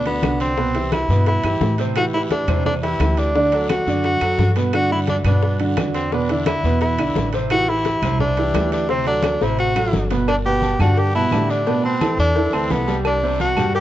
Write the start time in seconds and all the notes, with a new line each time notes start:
Already playing: D2
0.05 D3 B3 D4 F#4, high bongo, high conga, high timbale
0.23 C2 D3 D4 F#4, high bongo, low bongo, high conga, high timbale, short guiro, claves
0.40 C4, high bongo, high conga, high timbale, short guiro
0.57 B2 B3 B4, high bongo, high conga, long guiro
0.75 E3 E4 G4, high bongo, high conga, high timbale
0.92 E4, high bongo, high conga, high timbale, short guiro, claves
1.09 G2 B2 B3 B4, high conga, short guiro
1.27 E4, high bongo, high conga, high timbale, long guiro
1.44 G2 E3 E4 G4, high bongo, high conga, high timbale, claves
1.61 A2, high bongo, low bongo, high conga, short guiro
1.78 C3 C4 C5, high bongo, high conga, high timbale, short guiro
1.96 E3 E4 F#4 G4, high bongo, high conga, high timbale, long guiro, claves
2.14 E3 E4 G4, high bongo, high conga
2.30 D4, high bongo, high conga, high timbale, short guiro
2.47 E2 C3 C4 C5, low conga, high timbale, short guiro, claves
2.65 D4, high bongo, high conga, low conga, long guiro
2.83 E3 E4 G4, high bongo, high conga, high timbale
3.00 D2 E3 E4 G4, high bongo, low bongo, high conga, high timbale, short guiro, claves
3.17 D4, high bongo, high timbale, short guiro
3.35 D3 D4 D5, high bongo, high conga, long guiro
3.52 F#3 F#4 A4, high bongo, high conga, high timbale
3.69 F#4, high bongo, high conga, high timbale, short guiro, claves
3.86 F#2 D3 D4 D5, short guiro
4.04 F#4, high bongo, high conga, high timbale, long guiro
4.21 F#2 F#3 F#4 A4, high bongo, high conga, high timbale, claves
4.38 G2, high bongo, low bongo, high conga, short guiro
4.56 B2 B3 B4, high bongo, high conga, high timbale, short guiro
4.73 D3 D4 F#4, high bongo, high conga, high timbale, long guiro, claves
4.90 D3 D4 E4 F#4, high bongo, high conga
5.07 D4, high bongo, high conga, high timbale, short guiro
5.24 G2 B2 B3 D4 B4, low conga, high timbale, short guiro, claves
5.43 high bongo, high conga, long guiro
5.59 D3 D4 F#4, high bongo, high conga, high timbale
5.77 E2 D3 D4 F#4, high bongo, low bongo, high conga, high timbale, low timbale, short guiro, claves
5.94 C4, high bongo, high conga, high timbale, short guiro
6.11 B2 B3 D4 B4, high bongo, high conga, long guiro
6.29 D3 D4 E4, high bongo, high conga, high timbale
6.46 E4, high bongo, high conga, high timbale, short guiro, claves
6.63 E2 B2 B3 B4, high conga, short guiro
6.80 E4, high bongo, high conga, high timbale, long guiro
6.98 B1 D3 D4 E4, high bongo, high conga, high timbale, claves
7.15 A1, high bongo, low bongo, high conga, low timbale, short guiro
7.33 C3 C4 C5, high bongo, high conga, high timbale, short guiro
7.50 E3 E4 F#4 G4, high bongo, high conga, high timbale, claves
7.68 E3 E4 G4, high bongo, high conga
7.85 high bongo, high conga, high timbale, short guiro
8.02 C2 C3 C4 C5, low conga, high timbale, short guiro, claves
8.19 D4, high bongo, high conga, low conga, long guiro
8.37 E3 E4 G4, high bongo, high conga, high timbale
8.54 D2 E3 E4 G4, high bongo, low bongo, high conga, high timbale, low timbale, short guiro, claves
8.71 D4, high bongo, high conga, high timbale, short guiro
8.89 C3 C4 C5, high bongo, high conga, long guiro
9.06 F#3 D4 F#4 A4, high bongo, high conga, high timbale
9.23 high bongo, high conga, high timbale, short guiro, claves
9.41 A1 C3 C4 E4 C5, high bongo, high conga, short guiro
9.58 F#4, high conga, high timbale, long guiro
9.75 F#3 F#4 A4, low bongo, high conga, high timbale, claves
9.93 G1, low bongo, high conga, short guiro
10.10 B2 B3 B4, low bongo, high conga, high timbale, short guiro
10.27 D4, cowbell, high conga, low agogo, long guiro, claves
10.45 B2 B3 G4 B4, high conga
10.62 cowbell, high conga, low agogo, short guiro
10.79 G2 D3 D4 F#4 G4, cowbell, low conga, low agogo, short guiro, claves
10.97 G4, cowbell, high conga, long guiro
11.14 B2 B3 E4 B4, high conga, low agogo
11.31 A2 D3 D4 G4, cowbell, high conga, low timbale, low agogo, short guiro, claves
11.49 D4, high conga, short guiro
11.67 B2 B3 B4, cowbell, high conga, low agogo, long guiro
11.84 C4, high conga, low agogo
12.01 E3 E4 A4, cowbell, high conga, low agogo, short guiro, claves
12.18 E2 D4, high conga, short guiro
12.36 E3 E4 A4, cowbell, high conga, low agogo, long guiro
12.53 D2 E3 C4 E4 A4, high conga, low agogo, claves
12.70 C2 B3, cowbell, high conga, low timbale, short guiro
12.87 G3 G4, cowbell, high conga, low agogo, short guiro
13.05 D4, cowbell, high conga, low agogo, long guiro, claves
13.23 C3 C4 C5, high conga
13.40 F#4, cowbell, high conga, low agogo, short guiro
13.56 G2 G3 G4, cowbell, low conga, low agogo, short guiro, claves
13.74 G4, cowbell, high conga, long guiro